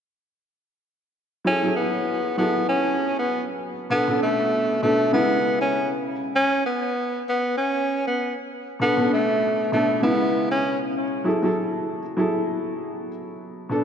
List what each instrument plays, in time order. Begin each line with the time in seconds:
1.45 upright piano F#3 E4 G#4 A4, tenor saxophone C#4
1.63 upright piano F#3 E4 G#4 A4
1.76 tenor saxophone B3
2.37 upright piano F#3 E4 G#4 A4, tenor saxophone B3
2.69 tenor saxophone C#4
3.18 tenor saxophone B3
3.90 upright piano B2 B3 D4 A4, tenor saxophone B3
4.07 upright piano B2 B3 C#4 A4
4.16 upright piano D4
4.22 tenor saxophone A3
4.82 upright piano B2 B3 D4 A4, tenor saxophone A3
5.12 upright piano C#3 G#3 B3 E4, tenor saxophone B3
5.61 tenor saxophone C#4
6.36 tenor saxophone C#4
6.66 tenor saxophone B3
7.29 tenor saxophone B3
7.57 tenor saxophone C#4
8.07 tenor saxophone B3
8.79 upright piano B2 B3 D4 A4, tenor saxophone B3
8.97 upright piano B2 B3 C#4 A4
9.05 upright piano D4
9.13 tenor saxophone A3
9.72 upright piano B2 B3 D4 A4, tenor saxophone A3
10.02 upright piano C#3 G#3 B3 E4, tenor saxophone B3
10.51 tenor saxophone C#4
11.24 upright piano F#3 E4 G#4 A4
11.42 upright piano F#3 E4 G#4 A4
12.17 upright piano F#3 E4 G#4 A4
13.69 upright piano B2 B3 D4 A4